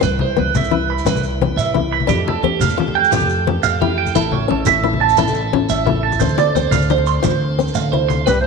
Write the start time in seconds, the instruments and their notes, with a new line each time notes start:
0.01 upright bass C2, tonewheel organ G3 E4 B4, clean electric guitar B4, muted steel-string acoustic guitar stroke, high conga, shekere
0.19 clean electric guitar C5, low conga
0.37 upright bass C2, steel-string acoustic guitar B3, clean electric guitar B4, high conga
0.55 upright bass C2, clean electric guitar E5, low conga, shekere
0.63 low conga, shekere
0.71 steel-string acoustic guitar E4, clean electric guitar B4, high conga
0.90 clean electric guitar B5
0.98 shekere
1.05 upright bass C2, clean electric guitar B4, muted steel-string acoustic guitar stroke, high conga, shekere
1.16 low conga, shekere
1.23 shekere
1.33 low conga
1.42 steel-string acoustic guitar C4, high conga, low conga
1.56 upright bass C2, clean electric guitar E5, shekere
1.74 steel-string acoustic guitar E4, high conga, low conga
1.93 clean electric guitar B5
2.00 low conga
2.07 upright bass F2, tonewheel organ A3 G4 A4, steel-string acoustic guitar D4, clean electric guitar G4, high conga, shekere
2.27 clean electric guitar A4, low conga
2.43 upright bass F2, steel-string acoustic guitar C4, clean electric guitar G4, high conga
2.60 upright bass F2, clean electric guitar F5, low conga, shekere
2.69 low conga, shekere
2.78 steel-string acoustic guitar F4, muted clean electric guitar stroke, high conga
2.88 low conga
2.95 clean electric guitar G5
3.04 shekere
3.11 upright bass F2, steel-string acoustic guitar F4, clean electric guitar G4, high conga, shekere
3.20 low conga, shekere
3.29 shekere
3.39 low conga
3.47 steel-string acoustic guitar C4, high conga, low conga
3.63 upright bass F2, clean electric guitar F5, shekere
3.81 steel-string acoustic guitar E4, clean electric guitar G4, high conga, low conga
3.98 clean electric guitar G5
4.06 low conga, shekere
4.15 upright bass A1, tonewheel organ C#4 E4, steel-string acoustic guitar E4, clean electric guitar A4, high conga, shekere
4.32 clean electric guitar C#5, low conga
4.48 upright bass A1, steel-string acoustic guitar C#4, clean electric guitar A4, high conga
4.66 upright bass A1, clean electric guitar E5, low conga, shekere
4.76 low conga
4.84 steel-string acoustic guitar E4, muted clean electric guitar stroke, high conga
4.93 low conga
5.01 clean electric guitar A5
5.09 shekere
5.17 upright bass A1, steel-string acoustic guitar E4, clean electric guitar A4, high conga, shekere
5.27 low conga, shekere
5.34 shekere
5.44 low conga
5.53 steel-string acoustic guitar C#4, high conga, low conga
5.69 upright bass A1, clean electric guitar E5, shekere
5.86 steel-string acoustic guitar E4, clean electric guitar A4, high conga, low conga
6.03 clean electric guitar A5
6.12 low conga, shekere
6.20 upright bass D2, tonewheel organ C4 D4 A4, clean electric guitar C5, muted steel-string acoustic guitar stroke, high conga, shekere
6.29 low conga, shekere
6.38 clean electric guitar D5, low conga, shekere
6.55 upright bass D2, steel-string acoustic guitar C4, clean electric guitar C5, high conga, shekere
6.64 low conga
6.71 upright bass D2, clean electric guitar F5, low conga, shekere
6.82 shekere
6.89 steel-string acoustic guitar D4, clean electric guitar C5, high conga, shekere
6.98 low conga
7.06 clean electric guitar C6, shekere
7.23 upright bass D2, steel-string acoustic guitar F4, clean electric guitar C5, high conga, low conga, shekere
7.31 low conga
7.58 steel-string acoustic guitar C4, high conga, shekere
7.68 shekere
7.74 upright bass D2, clean electric guitar F5, high conga, shekere
7.92 steel-string acoustic guitar E4, clean electric guitar C5, low conga
8.09 clean electric guitar C6, low conga, shekere
8.26 upright bass C2, alto saxophone G3, steel-string acoustic guitar C4, clean electric guitar B4, clarinet B4, high conga, shekere
8.40 alto saxophone A3, clarinet C5, clean electric guitar C5